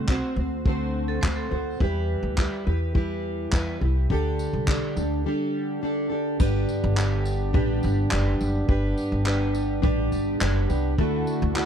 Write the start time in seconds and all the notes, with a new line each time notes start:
Already playing: C2
0.08 A3 C4 F#4 C5, kick, clap
0.36 D2 C4 F#4 C5
0.65 D3 A3 C4 F#4 C5, kick
1.08 C4 A4
1.21 D2 A3 C4 F#4 C5, kick, clap
1.36 C4 A4
1.51 D2 C4 F#4 C5
1.80 E2 E3 G3 E4 G4 B4, kick
2.23 D2
2.37 G3 E4 G4 B4, kick, clap
2.67 E2 E4 G4 B4
2.94 E3 G3 E4 G4 B4, kick
3.51 E2 G3 E4 G4 B4, kick, clap
3.81 C2 E4 G4 B4
4.10 D2 D3 G3 D4 G4 A4, kick
4.39 tambourine
4.53 C2
4.68 G3 D4 G4 A4, kick, clap
4.97 D2 D4 G4 A4, tambourine
5.25 D3 G3 D4 G4 A4
5.82 G3 D4 G4 A4
6.10 D4 G4 A4
6.39 G1 G3 B3 D4 G4 B4, kick, crash
6.69 tambourine
6.84 G1
6.96 G3 D4 G4 B4, clap
7.25 tambourine
7.53 A1 G3 D4 G4 B4, kick
7.83 G1, tambourine
8.10 F#1 G3 D4 G4 B4, clap
8.41 F#1, tambourine
8.68 G1 G3 D4 G4 B4, kick
8.98 tambourine
9.12 G1
9.24 G3 D4 G4 B4, clap
9.55 tambourine
9.82 A1 G3 D4 G4 B4, kick
10.12 G1, tambourine
10.40 F#1 G3 D4 G4 B4, clap
10.68 C2 D4 G4 B4, tambourine
10.97 D2 D3 A3 D4 E4 F#4 A4, kick
11.27 tambourine
11.42 D2
11.54 A3 E4 F#4 A4, clap